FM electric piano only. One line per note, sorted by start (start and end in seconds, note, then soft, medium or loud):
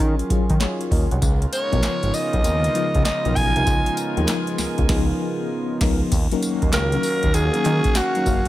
0.00 0.30 F#3 medium
0.00 0.30 C#4 medium
0.00 0.31 F4 medium
0.00 0.31 G#4 medium
0.00 0.92 A#4 loud
0.30 0.60 F#3 medium
0.30 0.61 C#4 medium
0.30 0.61 F4 medium
0.30 0.60 G#4 loud
0.61 0.90 G#4 medium
0.61 0.90 C#5 medium
0.92 1.11 A#4 medium
0.92 1.10 D#5 medium
1.12 1.41 C#5 medium
1.12 1.40 F#5 medium
1.72 2.40 F3 medium
1.72 2.41 B3 medium
1.72 2.41 D#4 medium
1.72 2.41 A#4 medium
2.75 3.05 F3 medium
2.75 3.05 B3 medium
2.75 3.06 D#4 medium
2.75 3.06 F4 medium
3.26 3.43 F3 medium
3.26 3.43 B3 medium
3.26 3.43 D#4 medium
3.26 3.43 A#4 medium
3.56 3.94 F3 medium
3.56 3.94 B3 medium
3.56 3.94 D#4 medium
3.56 3.94 A#4 medium
4.17 4.85 F3 loud
4.17 4.86 B3 medium
4.17 4.86 D#4 medium
4.17 4.23 G#4 medium
4.25 4.89 A#4 loud
4.89 5.12 F3 loud
4.89 5.12 B3 loud
4.89 5.12 D#4 loud
4.89 5.12 G#4 loud
5.82 6.04 F3 loud
5.82 6.04 B3 loud
5.82 6.04 D#4 loud
5.82 6.04 A#4 loud
6.32 6.69 F#3 loud
6.32 6.69 A#3 loud
6.32 6.70 C#4 loud
6.32 6.70 D#4 medium
6.32 6.70 A#4 loud
6.93 7.30 F#3 medium
6.93 7.31 A#3 medium
6.93 7.31 C#4 medium
6.93 7.31 D#4 medium
6.93 7.31 A#4 medium
7.54 7.92 F#3 medium
7.54 7.92 A#3 medium
7.54 7.92 C#4 medium
7.54 7.92 D#4 medium
7.54 7.93 A#4 medium
8.16 8.25 F#3 medium
8.16 8.26 A#3 medium
8.16 8.26 C#4 medium
8.16 8.27 D#4 medium
8.16 8.26 A#4 medium
8.26 8.48 F#3 medium
8.26 8.48 A#3 medium
8.26 8.48 C#4 medium
8.26 8.48 A#4 medium
8.26 8.48 F5 medium